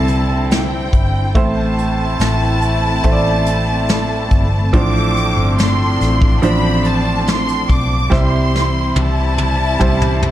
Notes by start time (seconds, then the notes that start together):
Already playing: C2 D3 G3 C4 E4 A4 A5
0.08 closed hi-hat
0.51 G5, snare, closed hi-hat
0.93 G1, kick, closed hi-hat
1.35 A1 A2 E3 A3 C4 E4 C5 A5, kick, closed hi-hat
1.78 closed hi-hat
2.20 A1, snare, closed hi-hat
2.62 closed hi-hat
3.03 A1 A3 E4 C5, kick, closed hi-hat
3.12 D5
3.46 closed hi-hat
3.89 snare, closed hi-hat
4.31 G1, kick, closed hi-hat
4.73 A1 A2 F3 D4 C5 D6, kick, closed hi-hat
5.17 closed hi-hat
5.37 G1
5.58 C6, snare, closed hi-hat
6.01 A1, snare, closed hi-hat
6.22 kick
6.42 A1 F3 D4 C5 B5, closed hi-hat
6.85 A5, closed hi-hat
7.27 C6, snare, closed hi-hat
7.48 closed hi-hat
7.69 B1 D6, kick, closed hi-hat
8.10 C2 C3 E3 G3 E4 C5 C6, kick, snare
8.56 snare
8.96 C2 A5, high tom
9.38 high tom
9.79 C2 G3 E4 C5, kick, mid tom
10.02 mid tom
10.23 mid tom